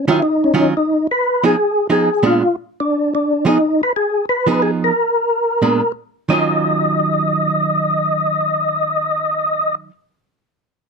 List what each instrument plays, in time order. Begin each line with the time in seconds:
0.08 hollow-body jazz guitar D#3 F#3 C#4 F4, tonewheel organ E4
0.22 tonewheel organ D#4
0.44 tonewheel organ C#4
0.54 hollow-body jazz guitar D#3 F#3 C#4 F4
0.77 tonewheel organ D#4
1.11 tonewheel organ B4
1.44 hollow-body jazz guitar F3 B3 D#4 G#4, tonewheel organ G#4
1.90 hollow-body jazz guitar F3 B3 D#4 G#4, tonewheel organ G#4
2.23 hollow-body jazz guitar A#2 G#3 B3 D4, tonewheel organ F4
2.80 tonewheel organ D4
3.15 tonewheel organ D4
3.45 hollow-body jazz guitar F3 B3 D#4 G#4, tonewheel organ D#4
3.83 tonewheel organ B4
3.96 tonewheel organ G#4
4.29 tonewheel organ B4
4.47 hollow-body jazz guitar F3 B3 D#4 G#4
4.62 tonewheel organ G#4
4.84 tonewheel organ A#4
5.62 hollow-body jazz guitar A#2 G#3 B3 D4
6.29 hollow-body jazz guitar D#3 F#3 C#4 F4, tonewheel organ D#5